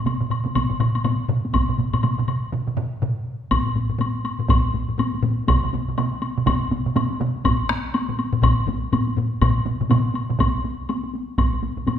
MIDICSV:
0, 0, Header, 1, 3, 480
1, 0, Start_track
1, 0, Tempo, 491803
1, 1505, Time_signature, 4, 2, 24, 8
1, 11700, End_track
2, 0, Start_track
2, 0, Title_t, "Taiko and cinematic ensemble drums"
2, 53, Note_on_c, 9, 45, 58
2, 58, Note_on_c, 9, 48, 63
2, 60, Note_on_c, 9, 47, 63
2, 151, Note_off_c, 9, 45, 0
2, 156, Note_off_c, 9, 48, 0
2, 157, Note_off_c, 9, 47, 0
2, 199, Note_on_c, 9, 45, 52
2, 201, Note_on_c, 9, 47, 64
2, 293, Note_off_c, 9, 45, 0
2, 293, Note_on_c, 9, 45, 56
2, 296, Note_off_c, 9, 47, 0
2, 296, Note_on_c, 9, 47, 62
2, 390, Note_off_c, 9, 45, 0
2, 394, Note_off_c, 9, 47, 0
2, 437, Note_on_c, 9, 47, 59
2, 443, Note_on_c, 9, 45, 61
2, 443, Note_on_c, 9, 48, 45
2, 534, Note_off_c, 9, 47, 0
2, 537, Note_on_c, 9, 47, 63
2, 541, Note_off_c, 9, 45, 0
2, 541, Note_off_c, 9, 48, 0
2, 544, Note_on_c, 9, 45, 63
2, 546, Note_on_c, 9, 41, 61
2, 546, Note_on_c, 9, 48, 63
2, 634, Note_off_c, 9, 47, 0
2, 641, Note_off_c, 9, 45, 0
2, 644, Note_off_c, 9, 41, 0
2, 644, Note_off_c, 9, 48, 0
2, 679, Note_on_c, 9, 47, 56
2, 683, Note_on_c, 9, 45, 64
2, 776, Note_off_c, 9, 47, 0
2, 780, Note_off_c, 9, 45, 0
2, 780, Note_on_c, 9, 45, 85
2, 780, Note_on_c, 9, 47, 85
2, 877, Note_off_c, 9, 47, 0
2, 878, Note_off_c, 9, 45, 0
2, 927, Note_on_c, 9, 48, 48
2, 1017, Note_on_c, 9, 45, 85
2, 1024, Note_off_c, 9, 48, 0
2, 1024, Note_on_c, 9, 47, 87
2, 1025, Note_on_c, 9, 48, 63
2, 1115, Note_off_c, 9, 45, 0
2, 1121, Note_off_c, 9, 47, 0
2, 1122, Note_off_c, 9, 48, 0
2, 1255, Note_on_c, 9, 45, 83
2, 1263, Note_on_c, 9, 47, 85
2, 1352, Note_off_c, 9, 45, 0
2, 1361, Note_off_c, 9, 47, 0
2, 1413, Note_on_c, 9, 48, 49
2, 1496, Note_on_c, 9, 45, 59
2, 1501, Note_on_c, 9, 47, 66
2, 1505, Note_off_c, 9, 48, 0
2, 1505, Note_on_c, 9, 48, 62
2, 1509, Note_on_c, 9, 41, 75
2, 1593, Note_off_c, 9, 45, 0
2, 1599, Note_off_c, 9, 47, 0
2, 1603, Note_off_c, 9, 48, 0
2, 1607, Note_off_c, 9, 41, 0
2, 1644, Note_on_c, 9, 45, 63
2, 1649, Note_on_c, 9, 47, 53
2, 1741, Note_off_c, 9, 45, 0
2, 1741, Note_on_c, 9, 45, 58
2, 1744, Note_on_c, 9, 48, 47
2, 1747, Note_off_c, 9, 47, 0
2, 1749, Note_on_c, 9, 47, 59
2, 1839, Note_off_c, 9, 45, 0
2, 1842, Note_off_c, 9, 48, 0
2, 1847, Note_off_c, 9, 47, 0
2, 1883, Note_on_c, 9, 45, 64
2, 1888, Note_on_c, 9, 48, 53
2, 1893, Note_on_c, 9, 47, 63
2, 1980, Note_off_c, 9, 45, 0
2, 1982, Note_on_c, 9, 45, 61
2, 1985, Note_off_c, 9, 48, 0
2, 1985, Note_on_c, 9, 48, 62
2, 1987, Note_off_c, 9, 47, 0
2, 1987, Note_on_c, 9, 47, 72
2, 2080, Note_off_c, 9, 45, 0
2, 2083, Note_off_c, 9, 48, 0
2, 2084, Note_off_c, 9, 47, 0
2, 2123, Note_on_c, 9, 45, 52
2, 2132, Note_on_c, 9, 47, 64
2, 2221, Note_off_c, 9, 45, 0
2, 2223, Note_on_c, 9, 45, 54
2, 2230, Note_off_c, 9, 47, 0
2, 2230, Note_on_c, 9, 47, 58
2, 2321, Note_off_c, 9, 45, 0
2, 2328, Note_off_c, 9, 47, 0
2, 2464, Note_on_c, 9, 45, 75
2, 2464, Note_on_c, 9, 47, 82
2, 2561, Note_off_c, 9, 47, 0
2, 2562, Note_off_c, 9, 45, 0
2, 2605, Note_on_c, 9, 45, 61
2, 2611, Note_on_c, 9, 47, 59
2, 2700, Note_off_c, 9, 45, 0
2, 2700, Note_on_c, 9, 45, 89
2, 2708, Note_off_c, 9, 47, 0
2, 2708, Note_on_c, 9, 47, 91
2, 2797, Note_off_c, 9, 45, 0
2, 2806, Note_off_c, 9, 47, 0
2, 2946, Note_on_c, 9, 45, 79
2, 2948, Note_on_c, 9, 47, 84
2, 3044, Note_off_c, 9, 45, 0
2, 3046, Note_off_c, 9, 47, 0
2, 3428, Note_on_c, 9, 48, 62
2, 3430, Note_on_c, 9, 41, 88
2, 3432, Note_on_c, 9, 45, 64
2, 3525, Note_off_c, 9, 48, 0
2, 3528, Note_off_c, 9, 41, 0
2, 3530, Note_off_c, 9, 45, 0
2, 3569, Note_on_c, 9, 45, 63
2, 3575, Note_on_c, 9, 48, 19
2, 3662, Note_off_c, 9, 45, 0
2, 3662, Note_on_c, 9, 45, 61
2, 3667, Note_off_c, 9, 48, 0
2, 3667, Note_on_c, 9, 48, 52
2, 3760, Note_off_c, 9, 45, 0
2, 3764, Note_off_c, 9, 48, 0
2, 3800, Note_on_c, 9, 45, 65
2, 3812, Note_on_c, 9, 48, 21
2, 3893, Note_off_c, 9, 45, 0
2, 3893, Note_on_c, 9, 45, 96
2, 3906, Note_off_c, 9, 48, 0
2, 3906, Note_on_c, 9, 48, 58
2, 3991, Note_off_c, 9, 45, 0
2, 4004, Note_off_c, 9, 48, 0
2, 4049, Note_on_c, 9, 48, 22
2, 4144, Note_off_c, 9, 48, 0
2, 4144, Note_on_c, 9, 48, 53
2, 4241, Note_off_c, 9, 48, 0
2, 4282, Note_on_c, 9, 45, 70
2, 4296, Note_on_c, 9, 48, 20
2, 4379, Note_off_c, 9, 45, 0
2, 4381, Note_on_c, 9, 45, 90
2, 4386, Note_off_c, 9, 48, 0
2, 4386, Note_on_c, 9, 48, 68
2, 4390, Note_on_c, 9, 41, 112
2, 4479, Note_off_c, 9, 45, 0
2, 4483, Note_off_c, 9, 48, 0
2, 4487, Note_off_c, 9, 41, 0
2, 4539, Note_on_c, 9, 48, 21
2, 4625, Note_on_c, 9, 45, 63
2, 4629, Note_off_c, 9, 48, 0
2, 4629, Note_on_c, 9, 48, 49
2, 4723, Note_off_c, 9, 45, 0
2, 4726, Note_off_c, 9, 48, 0
2, 4767, Note_on_c, 9, 45, 61
2, 4774, Note_on_c, 9, 48, 18
2, 4863, Note_off_c, 9, 45, 0
2, 4863, Note_on_c, 9, 45, 84
2, 4872, Note_off_c, 9, 48, 0
2, 4874, Note_on_c, 9, 48, 73
2, 4961, Note_off_c, 9, 45, 0
2, 4971, Note_off_c, 9, 48, 0
2, 5018, Note_on_c, 9, 48, 45
2, 5100, Note_on_c, 9, 45, 94
2, 5113, Note_off_c, 9, 48, 0
2, 5113, Note_on_c, 9, 48, 58
2, 5197, Note_off_c, 9, 45, 0
2, 5210, Note_off_c, 9, 48, 0
2, 5255, Note_on_c, 9, 48, 21
2, 5345, Note_off_c, 9, 48, 0
2, 5345, Note_on_c, 9, 48, 68
2, 5351, Note_on_c, 9, 41, 107
2, 5352, Note_on_c, 9, 47, 75
2, 5442, Note_off_c, 9, 48, 0
2, 5449, Note_off_c, 9, 41, 0
2, 5450, Note_off_c, 9, 47, 0
2, 5498, Note_on_c, 9, 48, 21
2, 5500, Note_on_c, 9, 47, 64
2, 5593, Note_off_c, 9, 48, 0
2, 5593, Note_on_c, 9, 48, 59
2, 5598, Note_off_c, 9, 47, 0
2, 5599, Note_on_c, 9, 47, 63
2, 5691, Note_off_c, 9, 48, 0
2, 5697, Note_off_c, 9, 47, 0
2, 5741, Note_on_c, 9, 48, 23
2, 5745, Note_on_c, 9, 47, 60
2, 5834, Note_off_c, 9, 48, 0
2, 5834, Note_on_c, 9, 48, 66
2, 5835, Note_off_c, 9, 47, 0
2, 5835, Note_on_c, 9, 47, 106
2, 5931, Note_off_c, 9, 48, 0
2, 5933, Note_off_c, 9, 47, 0
2, 5979, Note_on_c, 9, 48, 22
2, 6069, Note_off_c, 9, 48, 0
2, 6069, Note_on_c, 9, 48, 60
2, 6167, Note_off_c, 9, 48, 0
2, 6217, Note_on_c, 9, 48, 22
2, 6223, Note_on_c, 9, 47, 68
2, 6312, Note_off_c, 9, 48, 0
2, 6312, Note_on_c, 9, 41, 114
2, 6312, Note_on_c, 9, 48, 75
2, 6315, Note_off_c, 9, 47, 0
2, 6315, Note_on_c, 9, 47, 92
2, 6410, Note_off_c, 9, 41, 0
2, 6410, Note_off_c, 9, 48, 0
2, 6413, Note_off_c, 9, 47, 0
2, 6459, Note_on_c, 9, 48, 24
2, 6552, Note_on_c, 9, 47, 73
2, 6553, Note_off_c, 9, 48, 0
2, 6553, Note_on_c, 9, 48, 61
2, 6649, Note_off_c, 9, 47, 0
2, 6651, Note_off_c, 9, 48, 0
2, 6698, Note_on_c, 9, 47, 68
2, 6698, Note_on_c, 9, 48, 22
2, 6790, Note_off_c, 9, 47, 0
2, 6790, Note_on_c, 9, 47, 97
2, 6792, Note_off_c, 9, 48, 0
2, 6792, Note_on_c, 9, 48, 80
2, 6887, Note_off_c, 9, 47, 0
2, 6889, Note_off_c, 9, 48, 0
2, 6936, Note_on_c, 9, 48, 48
2, 7029, Note_off_c, 9, 48, 0
2, 7029, Note_on_c, 9, 48, 62
2, 7034, Note_on_c, 9, 47, 94
2, 7127, Note_off_c, 9, 48, 0
2, 7132, Note_off_c, 9, 47, 0
2, 7177, Note_on_c, 9, 48, 25
2, 7266, Note_on_c, 9, 45, 91
2, 7273, Note_on_c, 9, 41, 87
2, 7275, Note_off_c, 9, 48, 0
2, 7276, Note_on_c, 9, 48, 72
2, 7363, Note_off_c, 9, 45, 0
2, 7370, Note_off_c, 9, 41, 0
2, 7374, Note_off_c, 9, 48, 0
2, 7418, Note_on_c, 9, 48, 23
2, 7508, Note_on_c, 9, 37, 70
2, 7515, Note_off_c, 9, 48, 0
2, 7516, Note_on_c, 9, 48, 61
2, 7606, Note_off_c, 9, 37, 0
2, 7613, Note_off_c, 9, 48, 0
2, 7660, Note_on_c, 9, 48, 25
2, 7753, Note_off_c, 9, 48, 0
2, 7753, Note_on_c, 9, 48, 71
2, 7850, Note_off_c, 9, 48, 0
2, 7893, Note_on_c, 9, 45, 81
2, 7896, Note_on_c, 9, 48, 23
2, 7990, Note_off_c, 9, 45, 0
2, 7991, Note_off_c, 9, 48, 0
2, 7991, Note_on_c, 9, 48, 61
2, 8089, Note_off_c, 9, 48, 0
2, 8127, Note_on_c, 9, 45, 92
2, 8142, Note_on_c, 9, 48, 21
2, 8218, Note_off_c, 9, 45, 0
2, 8218, Note_on_c, 9, 45, 92
2, 8225, Note_on_c, 9, 41, 102
2, 8236, Note_off_c, 9, 48, 0
2, 8236, Note_on_c, 9, 48, 69
2, 8316, Note_off_c, 9, 45, 0
2, 8322, Note_off_c, 9, 41, 0
2, 8333, Note_off_c, 9, 48, 0
2, 8380, Note_on_c, 9, 48, 22
2, 8461, Note_on_c, 9, 45, 93
2, 8475, Note_off_c, 9, 48, 0
2, 8475, Note_on_c, 9, 48, 57
2, 8559, Note_off_c, 9, 45, 0
2, 8573, Note_off_c, 9, 48, 0
2, 8621, Note_on_c, 9, 48, 20
2, 8710, Note_on_c, 9, 45, 86
2, 8714, Note_off_c, 9, 48, 0
2, 8714, Note_on_c, 9, 48, 74
2, 8808, Note_off_c, 9, 45, 0
2, 8811, Note_off_c, 9, 48, 0
2, 8856, Note_on_c, 9, 48, 44
2, 8947, Note_on_c, 9, 45, 87
2, 8954, Note_off_c, 9, 48, 0
2, 8954, Note_on_c, 9, 48, 52
2, 9045, Note_off_c, 9, 45, 0
2, 9052, Note_off_c, 9, 48, 0
2, 9099, Note_on_c, 9, 48, 21
2, 9188, Note_on_c, 9, 41, 90
2, 9190, Note_off_c, 9, 48, 0
2, 9190, Note_on_c, 9, 48, 65
2, 9194, Note_on_c, 9, 45, 101
2, 9194, Note_on_c, 9, 47, 92
2, 9286, Note_off_c, 9, 41, 0
2, 9287, Note_off_c, 9, 48, 0
2, 9292, Note_off_c, 9, 45, 0
2, 9292, Note_off_c, 9, 47, 0
2, 9421, Note_on_c, 9, 48, 54
2, 9429, Note_on_c, 9, 47, 62
2, 9433, Note_on_c, 9, 45, 61
2, 9519, Note_off_c, 9, 48, 0
2, 9527, Note_off_c, 9, 47, 0
2, 9530, Note_off_c, 9, 45, 0
2, 9572, Note_on_c, 9, 48, 22
2, 9573, Note_on_c, 9, 47, 62
2, 9574, Note_on_c, 9, 45, 64
2, 9659, Note_off_c, 9, 48, 0
2, 9659, Note_on_c, 9, 48, 69
2, 9670, Note_off_c, 9, 47, 0
2, 9670, Note_on_c, 9, 47, 99
2, 9671, Note_off_c, 9, 45, 0
2, 9673, Note_on_c, 9, 45, 90
2, 9756, Note_off_c, 9, 48, 0
2, 9767, Note_off_c, 9, 47, 0
2, 9771, Note_off_c, 9, 45, 0
2, 9809, Note_on_c, 9, 48, 22
2, 9900, Note_off_c, 9, 48, 0
2, 9900, Note_on_c, 9, 48, 53
2, 9997, Note_off_c, 9, 48, 0
2, 10049, Note_on_c, 9, 47, 65
2, 10052, Note_on_c, 9, 48, 21
2, 10053, Note_on_c, 9, 45, 67
2, 10143, Note_on_c, 9, 41, 99
2, 10146, Note_off_c, 9, 47, 0
2, 10149, Note_off_c, 9, 48, 0
2, 10150, Note_off_c, 9, 45, 0
2, 10153, Note_on_c, 9, 48, 69
2, 10241, Note_off_c, 9, 41, 0
2, 10251, Note_off_c, 9, 48, 0
2, 10389, Note_on_c, 9, 48, 52
2, 10487, Note_off_c, 9, 48, 0
2, 10632, Note_on_c, 9, 48, 75
2, 10730, Note_off_c, 9, 48, 0
2, 10770, Note_on_c, 9, 48, 43
2, 10867, Note_off_c, 9, 48, 0
2, 10869, Note_on_c, 9, 48, 52
2, 10966, Note_off_c, 9, 48, 0
2, 11013, Note_on_c, 9, 48, 21
2, 11105, Note_on_c, 9, 41, 88
2, 11109, Note_on_c, 9, 45, 68
2, 11110, Note_off_c, 9, 48, 0
2, 11110, Note_on_c, 9, 48, 65
2, 11203, Note_off_c, 9, 41, 0
2, 11206, Note_off_c, 9, 45, 0
2, 11208, Note_off_c, 9, 48, 0
2, 11249, Note_on_c, 9, 48, 22
2, 11250, Note_on_c, 9, 45, 58
2, 11346, Note_off_c, 9, 45, 0
2, 11346, Note_on_c, 9, 45, 61
2, 11347, Note_off_c, 9, 48, 0
2, 11350, Note_on_c, 9, 48, 55
2, 11444, Note_off_c, 9, 45, 0
2, 11447, Note_off_c, 9, 48, 0
2, 11492, Note_on_c, 9, 45, 62
2, 11492, Note_on_c, 9, 48, 24
2, 11582, Note_off_c, 9, 48, 0
2, 11582, Note_on_c, 9, 48, 68
2, 11589, Note_off_c, 9, 45, 0
2, 11590, Note_on_c, 9, 45, 89
2, 11680, Note_off_c, 9, 48, 0
2, 11688, Note_off_c, 9, 45, 0
2, 11700, End_track
3, 0, Start_track
3, 0, Title_t, "Drums"
3, 65, Note_on_c, 9, 76, 40
3, 162, Note_off_c, 9, 76, 0
3, 305, Note_on_c, 9, 76, 38
3, 403, Note_off_c, 9, 76, 0
3, 541, Note_on_c, 9, 76, 44
3, 639, Note_off_c, 9, 76, 0
3, 784, Note_on_c, 9, 76, 37
3, 882, Note_off_c, 9, 76, 0
3, 929, Note_on_c, 9, 76, 37
3, 1020, Note_off_c, 9, 76, 0
3, 1020, Note_on_c, 9, 76, 36
3, 1118, Note_off_c, 9, 76, 0
3, 1501, Note_on_c, 9, 76, 48
3, 1598, Note_off_c, 9, 76, 0
3, 1889, Note_on_c, 9, 76, 40
3, 1982, Note_off_c, 9, 76, 0
3, 1982, Note_on_c, 9, 76, 42
3, 2080, Note_off_c, 9, 76, 0
3, 2225, Note_on_c, 9, 76, 39
3, 2323, Note_off_c, 9, 76, 0
3, 3426, Note_on_c, 9, 76, 50
3, 3523, Note_off_c, 9, 76, 0
3, 3912, Note_on_c, 9, 76, 41
3, 4010, Note_off_c, 9, 76, 0
3, 4146, Note_on_c, 9, 76, 37
3, 4244, Note_off_c, 9, 76, 0
3, 4393, Note_on_c, 9, 76, 56
3, 4491, Note_off_c, 9, 76, 0
3, 4873, Note_on_c, 9, 76, 40
3, 4970, Note_off_c, 9, 76, 0
3, 5352, Note_on_c, 9, 76, 51
3, 5449, Note_off_c, 9, 76, 0
3, 5834, Note_on_c, 9, 76, 42
3, 5931, Note_off_c, 9, 76, 0
3, 6069, Note_on_c, 9, 76, 38
3, 6167, Note_off_c, 9, 76, 0
3, 6314, Note_on_c, 9, 76, 52
3, 6412, Note_off_c, 9, 76, 0
3, 6797, Note_on_c, 9, 76, 45
3, 6895, Note_off_c, 9, 76, 0
3, 7271, Note_on_c, 9, 76, 50
3, 7369, Note_off_c, 9, 76, 0
3, 7750, Note_on_c, 9, 76, 47
3, 7848, Note_off_c, 9, 76, 0
3, 7991, Note_on_c, 9, 76, 38
3, 8089, Note_off_c, 9, 76, 0
3, 8233, Note_on_c, 9, 76, 54
3, 8330, Note_off_c, 9, 76, 0
3, 8714, Note_on_c, 9, 76, 41
3, 8812, Note_off_c, 9, 76, 0
3, 9189, Note_on_c, 9, 76, 51
3, 9287, Note_off_c, 9, 76, 0
3, 9669, Note_on_c, 9, 76, 43
3, 9766, Note_off_c, 9, 76, 0
3, 9910, Note_on_c, 9, 76, 34
3, 10007, Note_off_c, 9, 76, 0
3, 10153, Note_on_c, 9, 76, 47
3, 10250, Note_off_c, 9, 76, 0
3, 10628, Note_on_c, 9, 76, 35
3, 10726, Note_off_c, 9, 76, 0
3, 11111, Note_on_c, 9, 76, 41
3, 11208, Note_off_c, 9, 76, 0
3, 11589, Note_on_c, 9, 76, 37
3, 11686, Note_off_c, 9, 76, 0
3, 11700, End_track
0, 0, End_of_file